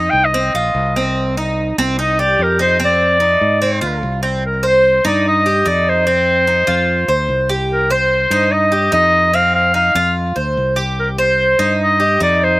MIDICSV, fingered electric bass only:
0, 0, Header, 1, 2, 480
1, 0, Start_track
1, 0, Key_signature, -3, "minor"
1, 0, Tempo, 409277
1, 1362, Time_signature, 4, 2, 24, 8
1, 14776, End_track
2, 0, Start_track
2, 0, Title_t, "Fingered electric bass"
2, 0, Program_c, 0, 33
2, 154, Note_on_c, 0, 36, 88
2, 604, Note_off_c, 0, 36, 0
2, 637, Note_on_c, 0, 34, 69
2, 862, Note_off_c, 0, 34, 0
2, 875, Note_on_c, 0, 36, 100
2, 2008, Note_off_c, 0, 36, 0
2, 2088, Note_on_c, 0, 36, 101
2, 2758, Note_off_c, 0, 36, 0
2, 2804, Note_on_c, 0, 41, 101
2, 3931, Note_off_c, 0, 41, 0
2, 4003, Note_on_c, 0, 44, 96
2, 4448, Note_off_c, 0, 44, 0
2, 4483, Note_on_c, 0, 38, 76
2, 4705, Note_off_c, 0, 38, 0
2, 4727, Note_on_c, 0, 36, 95
2, 5851, Note_off_c, 0, 36, 0
2, 5921, Note_on_c, 0, 43, 89
2, 6592, Note_off_c, 0, 43, 0
2, 6639, Note_on_c, 0, 41, 92
2, 7765, Note_off_c, 0, 41, 0
2, 7834, Note_on_c, 0, 41, 91
2, 8281, Note_off_c, 0, 41, 0
2, 8304, Note_on_c, 0, 38, 77
2, 8532, Note_off_c, 0, 38, 0
2, 8547, Note_on_c, 0, 36, 92
2, 9679, Note_off_c, 0, 36, 0
2, 9739, Note_on_c, 0, 43, 97
2, 10419, Note_off_c, 0, 43, 0
2, 10466, Note_on_c, 0, 41, 98
2, 11599, Note_off_c, 0, 41, 0
2, 11668, Note_on_c, 0, 41, 90
2, 12117, Note_off_c, 0, 41, 0
2, 12154, Note_on_c, 0, 38, 80
2, 12377, Note_off_c, 0, 38, 0
2, 12398, Note_on_c, 0, 36, 92
2, 13526, Note_off_c, 0, 36, 0
2, 13592, Note_on_c, 0, 43, 94
2, 14268, Note_off_c, 0, 43, 0
2, 14317, Note_on_c, 0, 41, 101
2, 14776, Note_off_c, 0, 41, 0
2, 14776, End_track
0, 0, End_of_file